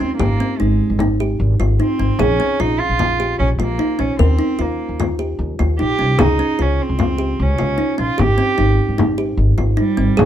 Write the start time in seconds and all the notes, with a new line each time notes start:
0.00 C4 C#4
0.17 G#1 A#3 G4, frame drum
0.40 C4
0.59 G#1 G#3 D#4
0.90 G#1
0.99 D#4, frame drum
1.19 G4, frame drum
1.40 G#1
1.60 G#1 F4, frame drum
1.80 C4 D#4, frame drum
2.00 G#1 C4
2.19 A#1 C#4 G#4, frame drum
2.40 C#4
2.60 A#1 D#4 F4
2.79 F4
2.89 A#1
2.99 F4, frame drum
3.20 G4, frame drum
3.39 A#1 C#4
3.59 A#1 A#3 F4, frame drum
3.79 D#4, frame drum
3.99 A#1 C#4
4.19 D#2 C4 A#4, frame drum
4.39 D#4, frame drum
4.59 D#2 A#3 F4
4.89 D#2
5.00 F4, frame drum
5.19 G4, frame drum
5.39 D#2, frame drum
5.59 D#2 F4, frame drum
5.79 A#1 D#4 G4
5.99 C2 C#4
6.19 C#2 D#4 G#4, frame drum
6.39 C#4
6.59 C#2 C#4 F4
6.83 C4
6.89 C#2
6.99 F4, frame drum
7.18 G4, frame drum
7.39 C#2 C#4
7.58 C#2 F4, frame drum
7.78 D#4, frame drum
7.98 A#1 C#4 F4
8.18 G#1 G4, frame drum
8.38 C4
8.58 G#1 D#4
8.89 G#1
8.98 D#4, frame drum
9.18 G4
9.37 G#1
9.58 G#1 F4, frame drum
9.77 G3 D#4, frame drum
9.97 G#1 C4
10.17 A#1 G#3 G#4, frame drum